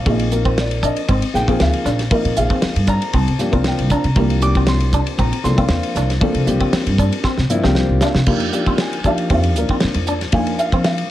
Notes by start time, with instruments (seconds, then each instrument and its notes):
0.06 upright bass A#1, grand piano F3 A#3 C4 D#4 G#4 D#5, clean electric guitar A#3, kick, ride
0.19 ride
0.31 grand piano F3 A#3 C4 D#4 A#4, hi-hat pedal
0.45 clean electric guitar C4, kick, ride
0.58 grand piano D5, snare, ride
0.71 ride
0.83 clean electric guitar D4, grand piano D#5, kick, hi-hat pedal
0.96 ride
1.09 upright bass G#1, clean electric guitar C4, kick, ride
1.22 ride
1.33 upright bass A#1, grand piano F3 A#3 C4 D#4 G#4 G5, snare, hi-hat pedal
1.48 grand piano F3 A#3 C4 D#4 G#4, clean electric guitar C4, kick, ride
1.60 upright bass D2, grand piano F5, snare, ride
1.73 ride
1.85 upright bass A#1, clean electric guitar D4, snare, hi-hat pedal
1.99 snare, ride
2.11 grand piano F3 A#3 C4 D#4 A#4 D#5, clean electric guitar A#3, kick, ride
2.25 upright bass A#2, ride
2.37 upright bass A#1, grand piano F3 A#3 C4 D#4 G#4 F5, hi-hat pedal
2.50 clean electric guitar C4, kick, ride
2.62 muted upright bass stroke, snare, ride
2.76 upright bass G2, ride
2.87 clean electric guitar D4, grand piano A#5, kick, hi-hat pedal
3.02 ride
3.13 upright bass C2, clean electric guitar C4, grand piano A5, kick, ride
3.28 upright bass C3, ride
3.39 upright bass G2, grand piano F3 A#3 C4 D4 G4, snare, hi-hat pedal
3.52 upright bass C2, grand piano F3 A#3 C4 D4 A#4, clean electric guitar C4, kick, ride
3.64 grand piano G5, snare, ride
3.79 upright bass C2, ride
3.90 clean electric guitar D4, grand piano A#5, kick, hi-hat pedal
4.04 upright bass C3, ride
4.16 upright bass C2, grand piano F3 A#3 C4 D4 G4, clean electric guitar A#3, kick, ride
4.30 ride
4.42 grand piano F3 A#3 C4 D4 G4 D6, hi-hat pedal
4.55 clean electric guitar C4, kick, ride
4.67 grand piano C6, snare, ride
4.80 ride
4.93 clean electric guitar D4, kick, hi-hat pedal
5.07 ride
5.18 upright bass A#1, clean electric guitar C4, grand piano A#5, kick, ride
5.33 ride
5.44 upright bass C2, grand piano F3 A#3 C4 D4 A4 C6, snare, hi-hat pedal
5.56 grand piano F3 A#3 C4 D4 F4, clean electric guitar C4, kick, ride
5.69 upright bass E2, snare, ride
5.83 ride
5.95 upright bass C2, clean electric guitar D4, snare, hi-hat pedal
6.10 snare, ride
6.20 grand piano F3 A#3 C4 D4 A4, clean electric guitar A#3, kick, ride
6.34 upright bass C3, ride
6.46 upright bass C2, grand piano F3 A#3 C4 D4 G4, hi-hat pedal
6.60 clean electric guitar C4, kick, ride
6.72 muted upright bass stroke, snare, ride
6.86 upright bass G2, ride
6.98 clean electric guitar D4, kick, hi-hat pedal
7.12 ride
7.24 clean electric guitar C4, kick, snare
7.38 upright bass C3, snare
7.50 upright bass G2, grand piano F3 A#3 C4 D4 E4, hi-hat pedal
7.63 upright bass C2, grand piano F3 A#3 C4 D4 G4, clean electric guitar C4, snare
7.75 grand piano C5, snare
7.89 upright bass C2
8.01 clean electric guitar D4, grand piano F5, snare, hi-hat pedal
8.15 upright bass C3, snare
8.26 upright bass F2, grand piano F3 A#3 D4 D#4 G4, clean electric guitar A#3, kick, crash
8.40 ride
8.52 grand piano F3 A#3 D4 D#4 G4, hi-hat pedal
8.66 upright bass F3, clean electric guitar C4, kick, ride
8.78 grand piano G#5, snare, ride
8.93 ride
9.04 upright bass F3, grand piano F3 A#3 D4 D#4 G4 F5, clean electric guitar D4, kick, hi-hat pedal
9.18 ride
9.30 upright bass F2, grand piano F3 A#3 D4 D#4 G4 F5, clean electric guitar C4, kick, ride
9.44 ride
9.55 upright bass D#2, grand piano F3 A#3 D4 D#4 A#4, hi-hat pedal
9.69 clean electric guitar C4, muted upright bass stroke, kick, ride
9.80 upright bass F3, snare, ride
9.94 upright bass F2, ride
10.07 clean electric guitar D4, hi-hat pedal
10.21 snare, ride
10.32 upright bass F2, grand piano F3 A#3 D4 D#4 F4 G#5, clean electric guitar A#3, kick, ride
10.47 ride
10.58 grand piano F5, hi-hat pedal
10.72 upright bass F3, clean electric guitar C4, kick, ride
10.84 grand piano F5, snare, ride
10.98 ride